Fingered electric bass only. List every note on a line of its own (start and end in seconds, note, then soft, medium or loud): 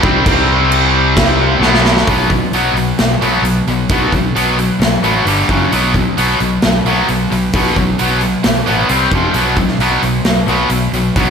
0.04 0.25 C2 medium
0.26 1.58 C2 medium
1.60 2.03 B1 medium
2.07 2.41 B1 medium
2.51 2.68 B1 medium
2.73 2.91 B1 medium
2.98 3.15 B1 medium
3.22 3.39 B1 medium
3.42 3.59 B1 medium
3.67 3.84 B1 medium
3.90 4.07 B1 medium
4.12 4.29 B1 medium
4.36 4.69 B1 medium
4.79 4.97 B1 loud
5.02 5.19 A1 medium
5.25 5.42 G1 medium
5.49 5.66 F#1 medium
5.72 6.05 B1 medium
6.18 6.34 B1 medium
6.40 6.57 B1 medium
6.63 6.79 B1 medium
6.85 7.02 B1 medium
7.09 7.25 B1 medium
7.31 7.48 B1 medium
7.54 7.70 B1 medium
7.76 7.93 B1 medium
8.00 8.33 B1 medium
8.45 8.61 B1 medium
8.68 8.84 A1 medium
8.90 9.06 C2 medium
9.11 9.28 F1 medium
9.34 9.68 B1 medium
9.79 9.96 B1 medium
10.02 10.19 B1 medium
10.25 10.42 B1 medium
10.47 10.64 B1 medium
10.70 10.87 B1 medium
10.92 11.09 B1 medium
11.16 11.30 B1 medium